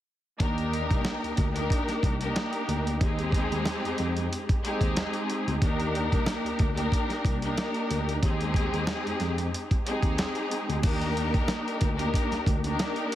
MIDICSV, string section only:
0, 0, Header, 1, 2, 480
1, 0, Start_track
1, 0, Key_signature, -3, "major"
1, 0, Tempo, 652174
1, 294, Time_signature, 4, 2, 24, 8
1, 9678, End_track
2, 0, Start_track
2, 0, Title_t, "String section"
2, 0, Program_c, 0, 48
2, 293, Note_on_c, 0, 58, 94
2, 295, Note_on_c, 0, 62, 83
2, 297, Note_on_c, 0, 63, 86
2, 298, Note_on_c, 0, 67, 89
2, 300, Note_on_c, 0, 70, 109
2, 1070, Note_off_c, 0, 58, 0
2, 1071, Note_off_c, 0, 62, 0
2, 1072, Note_off_c, 0, 63, 0
2, 1073, Note_off_c, 0, 67, 0
2, 1074, Note_off_c, 0, 70, 0
2, 1127, Note_on_c, 0, 58, 84
2, 1128, Note_on_c, 0, 62, 81
2, 1130, Note_on_c, 0, 63, 78
2, 1132, Note_on_c, 0, 67, 83
2, 1133, Note_on_c, 0, 70, 102
2, 1573, Note_off_c, 0, 58, 0
2, 1574, Note_off_c, 0, 62, 0
2, 1575, Note_off_c, 0, 63, 0
2, 1576, Note_off_c, 0, 67, 0
2, 1577, Note_off_c, 0, 70, 0
2, 1629, Note_on_c, 0, 58, 95
2, 1630, Note_on_c, 0, 62, 88
2, 1632, Note_on_c, 0, 63, 88
2, 1634, Note_on_c, 0, 67, 88
2, 1635, Note_on_c, 0, 70, 96
2, 2172, Note_off_c, 0, 58, 0
2, 2173, Note_off_c, 0, 62, 0
2, 2174, Note_off_c, 0, 63, 0
2, 2175, Note_off_c, 0, 67, 0
2, 2175, Note_off_c, 0, 70, 0
2, 2227, Note_on_c, 0, 56, 111
2, 2229, Note_on_c, 0, 60, 96
2, 2231, Note_on_c, 0, 63, 87
2, 2232, Note_on_c, 0, 67, 91
2, 2234, Note_on_c, 0, 68, 110
2, 3332, Note_off_c, 0, 56, 0
2, 3333, Note_off_c, 0, 60, 0
2, 3334, Note_off_c, 0, 63, 0
2, 3334, Note_off_c, 0, 67, 0
2, 3336, Note_off_c, 0, 68, 0
2, 3419, Note_on_c, 0, 56, 93
2, 3421, Note_on_c, 0, 60, 84
2, 3423, Note_on_c, 0, 63, 93
2, 3424, Note_on_c, 0, 67, 89
2, 3426, Note_on_c, 0, 68, 105
2, 4083, Note_off_c, 0, 56, 0
2, 4084, Note_off_c, 0, 60, 0
2, 4085, Note_off_c, 0, 63, 0
2, 4086, Note_off_c, 0, 67, 0
2, 4087, Note_off_c, 0, 68, 0
2, 4133, Note_on_c, 0, 58, 96
2, 4135, Note_on_c, 0, 62, 89
2, 4137, Note_on_c, 0, 63, 90
2, 4139, Note_on_c, 0, 67, 96
2, 4140, Note_on_c, 0, 70, 107
2, 4910, Note_off_c, 0, 58, 0
2, 4911, Note_off_c, 0, 62, 0
2, 4912, Note_off_c, 0, 63, 0
2, 4913, Note_off_c, 0, 67, 0
2, 4914, Note_off_c, 0, 70, 0
2, 4965, Note_on_c, 0, 58, 88
2, 4967, Note_on_c, 0, 62, 86
2, 4969, Note_on_c, 0, 63, 82
2, 4970, Note_on_c, 0, 67, 89
2, 4972, Note_on_c, 0, 70, 107
2, 5413, Note_off_c, 0, 58, 0
2, 5414, Note_off_c, 0, 62, 0
2, 5414, Note_off_c, 0, 63, 0
2, 5415, Note_off_c, 0, 67, 0
2, 5416, Note_off_c, 0, 70, 0
2, 5468, Note_on_c, 0, 58, 94
2, 5470, Note_on_c, 0, 62, 90
2, 5471, Note_on_c, 0, 63, 90
2, 5473, Note_on_c, 0, 67, 86
2, 5475, Note_on_c, 0, 70, 103
2, 6012, Note_off_c, 0, 58, 0
2, 6012, Note_off_c, 0, 62, 0
2, 6013, Note_off_c, 0, 63, 0
2, 6014, Note_off_c, 0, 67, 0
2, 6015, Note_off_c, 0, 70, 0
2, 6066, Note_on_c, 0, 56, 108
2, 6068, Note_on_c, 0, 60, 96
2, 6069, Note_on_c, 0, 63, 88
2, 6071, Note_on_c, 0, 67, 89
2, 6072, Note_on_c, 0, 68, 111
2, 7172, Note_off_c, 0, 56, 0
2, 7172, Note_off_c, 0, 60, 0
2, 7173, Note_off_c, 0, 63, 0
2, 7174, Note_off_c, 0, 67, 0
2, 7175, Note_off_c, 0, 68, 0
2, 7261, Note_on_c, 0, 56, 96
2, 7262, Note_on_c, 0, 60, 84
2, 7264, Note_on_c, 0, 63, 94
2, 7265, Note_on_c, 0, 67, 88
2, 7267, Note_on_c, 0, 68, 103
2, 7924, Note_off_c, 0, 56, 0
2, 7925, Note_off_c, 0, 60, 0
2, 7925, Note_off_c, 0, 63, 0
2, 7926, Note_off_c, 0, 67, 0
2, 7927, Note_off_c, 0, 68, 0
2, 7974, Note_on_c, 0, 58, 100
2, 7976, Note_on_c, 0, 62, 90
2, 7978, Note_on_c, 0, 63, 89
2, 7979, Note_on_c, 0, 67, 98
2, 7981, Note_on_c, 0, 70, 107
2, 8751, Note_off_c, 0, 58, 0
2, 8752, Note_off_c, 0, 62, 0
2, 8753, Note_off_c, 0, 63, 0
2, 8753, Note_off_c, 0, 67, 0
2, 8754, Note_off_c, 0, 70, 0
2, 8806, Note_on_c, 0, 58, 92
2, 8808, Note_on_c, 0, 62, 84
2, 8809, Note_on_c, 0, 63, 83
2, 8811, Note_on_c, 0, 67, 89
2, 8813, Note_on_c, 0, 70, 104
2, 9253, Note_off_c, 0, 58, 0
2, 9254, Note_off_c, 0, 62, 0
2, 9255, Note_off_c, 0, 63, 0
2, 9256, Note_off_c, 0, 67, 0
2, 9256, Note_off_c, 0, 70, 0
2, 9309, Note_on_c, 0, 58, 96
2, 9311, Note_on_c, 0, 62, 91
2, 9312, Note_on_c, 0, 63, 89
2, 9314, Note_on_c, 0, 67, 89
2, 9316, Note_on_c, 0, 70, 98
2, 9678, Note_off_c, 0, 58, 0
2, 9678, Note_off_c, 0, 62, 0
2, 9678, Note_off_c, 0, 63, 0
2, 9678, Note_off_c, 0, 67, 0
2, 9678, Note_off_c, 0, 70, 0
2, 9678, End_track
0, 0, End_of_file